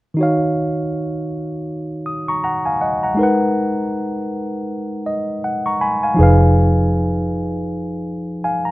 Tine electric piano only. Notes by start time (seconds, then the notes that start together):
0.14 D#3 D#4
0.19 F#4 C#5
0.23 F5
2.06 D#6
2.28 A#5 C#6
2.44 F#5 A#5
2.66 F5 G#5
2.81 D#5 F#5
3.03 F#5 A#5
3.15 G#3 D#4
3.19 A#4 B4
3.23 F#5
5.06 D#5
5.44 F#5
5.66 A#5 C#6
5.81 G#5 B5
6.03 F5 G#5
6.14 F3 D#4
6.19 G#4 B4
6.23 F5
8.44 F5 G#5
8.65 A#5